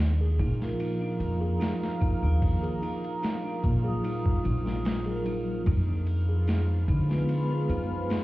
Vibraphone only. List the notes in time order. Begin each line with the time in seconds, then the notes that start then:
0.60 F3 F4 A#4
3.84 F#3 F4 D#6
5.06 F#3 F4 A#4
7.09 G#3 B3 F4 B4